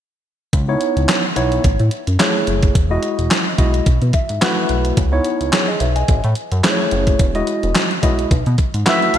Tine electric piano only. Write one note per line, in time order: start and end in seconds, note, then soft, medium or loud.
0.68 1.23 B3 medium
0.68 1.23 D#4 medium
0.68 1.23 E4 medium
0.68 1.23 C#5 medium
1.36 1.64 B3 medium
1.36 1.64 D#4 medium
1.36 1.64 E4 medium
1.36 1.64 C#5 loud
2.19 2.74 A3 medium
2.19 2.74 E4 medium
2.19 2.74 G#4 medium
2.19 2.75 C#5 medium
2.90 3.45 G#3 medium
2.90 3.45 E4 medium
2.90 3.46 F#4 medium
2.90 3.46 D#5 medium
3.58 3.86 G#3 medium
3.58 3.86 E4 medium
3.58 3.86 F#4 medium
3.58 3.86 D#5 medium
4.14 4.40 E5 medium
4.41 4.96 A3 medium
4.41 4.97 E4 medium
4.41 4.97 F#4 medium
4.41 4.97 B4 loud
4.41 4.93 F#5 medium
5.12 5.67 B3 medium
5.12 5.67 D#4 medium
5.12 5.67 E4 medium
5.12 5.52 C#5 medium
5.53 5.68 G#4 medium
5.53 5.68 C#5 medium
5.68 5.80 G#4 medium
5.68 5.80 D#5 medium
5.80 5.95 B4 soft
5.80 5.95 E5 medium
5.96 6.23 D#5 soft
5.96 6.22 G#5 medium
6.64 7.19 A3 medium
6.64 7.19 E4 medium
6.64 7.19 G#4 medium
6.64 6.71 C5 medium
6.71 7.22 C#5 medium
7.34 7.90 G#3 medium
7.34 7.90 E4 medium
7.34 7.90 F#4 medium
7.34 7.90 D#5 medium
8.03 8.30 G#3 medium
8.03 8.31 E4 medium
8.03 8.31 F#4 medium
8.03 8.31 D#5 medium
8.86 9.18 A3 medium
8.86 9.18 E4 medium
8.86 9.18 F#4 medium
8.86 9.18 B4 loud
8.86 9.12 F#5 medium
9.14 9.18 A5 medium